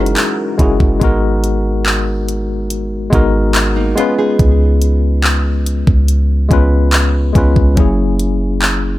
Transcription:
Already playing: 808-style bass F#1, analog synth pad E3 F#3 F#4 A#4, tine electric piano G#3 C#4 E4 F#4 A#4, nylon-string guitar D#4 G#4
0.06 closed hi-hat
0.17 clap, closed hi-hat
0.58 808-style bass F#1, tine electric piano G#3 C#4 E4 F#4, kick, closed hi-hat
0.62 tine electric piano G#4
0.80 808-style bass F#1, kick
1.00 808-style bass G#1, tine electric piano G#3 B3 D#4 F#4, kick, closed hi-hat
1.04 tine electric piano A#4
1.44 closed hi-hat
1.86 clap
2.29 closed hi-hat
2.70 closed hi-hat
3.10 808-style bass G#1, tine electric piano G#3 B3 D#4 F#4, kick, closed hi-hat
3.15 tine electric piano A#4
3.55 clap, closed hi-hat
3.76 nylon-string guitar A#3 D#4
3.95 tine electric piano G#3 B3 C#4 F4, nylon-string guitar B3 F4, closed hi-hat
4.00 tine electric piano B4
4.19 nylon-string guitar D#4 G#4
4.39 808-style bass C#2, kick, closed hi-hat
4.82 closed hi-hat
5.24 clap
5.66 closed hi-hat
5.87 808-style bass C#2, kick
6.08 closed hi-hat
6.49 808-style bass C#2, tine electric piano G#3 B3 C#4 F4, kick, closed hi-hat
6.53 tine electric piano B4
6.93 clap, closed hi-hat
7.33 808-style bass C#2, tine electric piano G#3 B3 C#4 F4, kick, closed hi-hat
7.38 tine electric piano B4
7.56 808-style bass C#2, kick
7.75 808-style bass F#1, tine electric piano F#3 A#3 C#4 E4, kick, closed hi-hat
7.80 tine electric piano G#4
8.19 closed hi-hat
8.62 clap

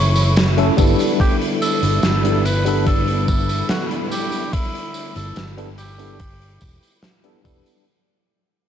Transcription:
Already playing: fingered electric bass F#1, string section E3 F#3 A3 C#4 E4, alto saxophone C#5
0.16 closed hi-hat, tambourine
0.36 snare, closed hi-hat, tambourine
0.57 tine electric piano F#3 A3 C#4 E4 A4, closed hi-hat
0.77 fingered electric bass G1, string section D3 G3 B3 E4, tine electric piano G3 B3 D4 E4 A4, kick, closed hi-hat, tambourine
0.99 closed hi-hat, tambourine
1.20 alto saxophone G4, kick, closed hi-hat, tambourine
1.41 closed hi-hat
1.62 alto saxophone A4, closed hi-hat, tambourine
1.83 fingered electric bass G1, closed hi-hat, tambourine
2.03 fingered electric bass G1, snare, closed hi-hat, tambourine
2.24 tine electric piano G3 B3 D4 E4 A4, closed hi-hat
2.45 alto saxophone B4, closed hi-hat, tambourine
2.65 tine electric piano G3 B3 D4 E4 A4, closed hi-hat, tambourine
2.87 alto saxophone A4, kick, closed hi-hat, tambourine
3.08 closed hi-hat
3.28 alto saxophone A4, kick, closed hi-hat, tambourine
3.49 closed hi-hat, tambourine
3.69 alto saxophone F#4, snare, closed hi-hat, tambourine
3.91 closed hi-hat
4.11 alto saxophone G4, closed hi-hat, tambourine
4.32 closed hi-hat, tambourine
4.53 alto saxophone E4, kick, closed hi-hat, tambourine
4.75 closed hi-hat
4.94 closed hi-hat, tambourine
5.16 fingered electric bass G1, alto saxophone A4, closed hi-hat, tambourine
5.36 fingered electric bass G1, snare, closed hi-hat, tambourine
5.57 tine electric piano G3 B3 D4 E4 A4, closed hi-hat
5.78 alto saxophone G4, closed hi-hat, tambourine
5.99 tine electric piano G3 B3 D4 E4 A4, closed hi-hat, tambourine
6.20 kick, closed hi-hat, tambourine
6.42 closed hi-hat
6.61 fingered electric bass E1, kick, closed hi-hat, tambourine
6.83 closed hi-hat, tambourine
7.03 snare, closed hi-hat, tambourine
7.23 tine electric piano G3 B3 D4 E4 A4, closed hi-hat
7.44 fingered electric bass E1, tine electric piano G3 B3 D4 E4 A4, kick, closed hi-hat, tambourine
7.66 closed hi-hat, tambourine

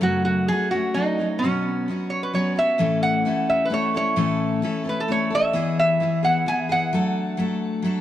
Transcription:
0.01 steel-string acoustic guitar F#2 C#3 F#3 A3 C#4 F#4, resonator guitar played with a steel bar F#4
0.25 resonator guitar played with a steel bar F#4
0.48 steel-string acoustic guitar F#3 A3 C#4 F#4, resonator guitar played with a steel bar G#4
0.71 steel-string acoustic guitar A3 C#4 F#4, resonator guitar played with a steel bar F#4
0.76 steel-string acoustic guitar F#3
0.94 steel-string acoustic guitar F#3 A3 C#4 F#4, resonator guitar played with a steel bar D#4
1.19 steel-string acoustic guitar F#3 A3 C#4 F#4
1.39 steel-string acoustic guitar B2, resonator guitar played with a steel bar C#4
1.44 steel-string acoustic guitar F#3 B3 C#4 F#4
1.88 steel-string acoustic guitar F#3 B3 C#4 F#4
2.10 resonator guitar played with a steel bar C#5
2.23 resonator guitar played with a steel bar B4
2.33 steel-string acoustic guitar F#3 B3 C#4 F#4, resonator guitar played with a steel bar C#5
2.56 steel-string acoustic guitar B3 C#4 F#4, resonator guitar played with a steel bar E5
2.78 steel-string acoustic guitar A2 E3 A3 C#4 E4 A4
3.03 resonator guitar played with a steel bar F#5
3.25 steel-string acoustic guitar A3 C#4 E4 A4
3.50 resonator guitar played with a steel bar E5
3.65 resonator guitar played with a steel bar B4
3.70 steel-string acoustic guitar A3 C#4 E4 A4, resonator guitar played with a steel bar C#5
3.94 steel-string acoustic guitar A3 C#4 E4 A4, resonator guitar played with a steel bar C#5
4.16 steel-string acoustic guitar A2 E3 A3 C#4 E4 A4
4.62 steel-string acoustic guitar A3 C#4 E4 A4
4.84 steel-string acoustic guitar A3 C#4 E4 A4
4.89 resonator guitar played with a steel bar B4
5.00 resonator guitar played with a steel bar A4
5.08 steel-string acoustic guitar A3 C#4 E4 A4, resonator guitar played with a steel bar C#5
5.30 steel-string acoustic guitar A3 C#4 E4 A4
5.35 resonator guitar played with a steel bar E5
5.53 steel-string acoustic guitar E3 B3 E4 G#4
5.79 resonator guitar played with a steel bar E5
6.00 steel-string acoustic guitar E3 B3 E4 G#4
6.23 steel-string acoustic guitar B3 E4 G#4, resonator guitar played with a steel bar F#5
6.46 steel-string acoustic guitar E3 B3 E4 G#4, resonator guitar played with a steel bar G#5
6.69 steel-string acoustic guitar B3 E4 G#4, resonator guitar played with a steel bar F#5
6.93 steel-string acoustic guitar F#3 A3 D4 A4
7.37 steel-string acoustic guitar F#3 A3 D4 A4
7.82 steel-string acoustic guitar F#3 A3 D4 A4

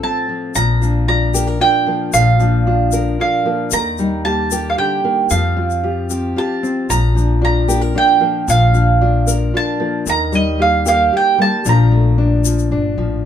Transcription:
Already playing: steel-string acoustic guitar A2 F3 F4 A4
0.03 steel-string acoustic guitar C4, mandolin A5
0.29 steel-string acoustic guitar F3
0.55 upright bass A#1, steel-string acoustic guitar A#2, upright piano F3, mandolin A#5, shaker
0.82 steel-string acoustic guitar F3, upright piano D4, shaker
1.08 steel-string acoustic guitar D4, upright piano F4, mandolin A#5
1.34 upright piano A#3, steel-string acoustic guitar G4, shaker
1.47 steel-string acoustic guitar A#4
1.61 steel-string acoustic guitar D4, upright piano F4, mandolin G5
1.87 steel-string acoustic guitar F3, upright piano A#3
2.13 upright bass A#1, steel-string acoustic guitar A#2, upright piano F3, mandolin F5, shaker
2.40 steel-string acoustic guitar F3, upright piano D4, shaker
2.67 steel-string acoustic guitar D4, upright piano F4
2.92 upright piano A#3, steel-string acoustic guitar A#4, shaker
3.19 steel-string acoustic guitar D4, upright piano F4, mandolin F5
3.45 steel-string acoustic guitar F3, upright piano A#3
3.71 upright bass D#2, steel-string acoustic guitar D#3, upright piano A#3, mandolin A#5, shaker
3.98 steel-string acoustic guitar G3, upright piano D#4, shaker
4.25 steel-string acoustic guitar A#3, upright piano G4, mandolin A5
4.51 upright piano A#3, steel-string acoustic guitar G4, shaker
4.70 mandolin F5
4.78 steel-string acoustic guitar D3, upright piano G4, mandolin G5
5.04 steel-string acoustic guitar D#3, upright piano A#3
5.30 upright bass F2, upright piano F3, steel-string acoustic guitar F3, mandolin F5, shaker
5.56 steel-string acoustic guitar C4, upright piano F4
5.70 shaker
5.83 steel-string acoustic guitar F4, upright piano G4
6.10 upright piano C4, steel-string acoustic guitar G4, shaker
6.36 steel-string acoustic guitar F4, upright piano G4, mandolin A5
6.63 steel-string acoustic guitar C4, upright piano C4, shaker
6.89 upright bass A#1, steel-string acoustic guitar A#2, upright piano F3, mandolin A#5, shaker
7.15 steel-string acoustic guitar F3, upright piano D4, shaker
7.42 steel-string acoustic guitar D4, upright piano F4, mandolin A#5
7.68 upright piano A#3, steel-string acoustic guitar G4, shaker
7.81 steel-string acoustic guitar A#4
7.95 steel-string acoustic guitar D4, upright piano F4, mandolin G5
8.20 steel-string acoustic guitar F3, upright piano A#3
8.48 upright bass A#1, steel-string acoustic guitar A#2, upright piano F3, mandolin F5, shaker
8.74 steel-string acoustic guitar F3, upright piano D4, shaker
9.01 steel-string acoustic guitar D4, upright piano F4
9.27 upright piano A#3, steel-string acoustic guitar A#4, shaker
9.54 steel-string acoustic guitar D4, upright piano F4, mandolin A5
9.80 steel-string acoustic guitar F3, upright piano A#3
10.06 upright bass D#2, upright piano D#3, steel-string acoustic guitar D#3, mandolin A#5, shaker
10.32 steel-string acoustic guitar G3, upright piano D#4, mandolin D#5, shaker
10.59 steel-string acoustic guitar A#3, upright piano G4, mandolin F5
10.86 upright piano A#3, steel-string acoustic guitar G4, mandolin F5, shaker
11.13 steel-string acoustic guitar A#3, upright piano G4
11.17 mandolin G5
11.38 steel-string acoustic guitar G3, upright piano A#3, mandolin A5
11.65 upright bass A#1, steel-string acoustic guitar A#2 F3 D4 F4, upright piano F3, shaker
11.69 mandolin A#5
11.92 steel-string acoustic guitar F3, upright piano A3
12.18 steel-string acoustic guitar D4, upright piano D4
12.45 upright piano F3, shaker
12.58 shaker
12.71 upright bass G1, upright piano D4, steel-string acoustic guitar D4
12.98 upright bass A1, steel-string acoustic guitar F3, upright piano F3

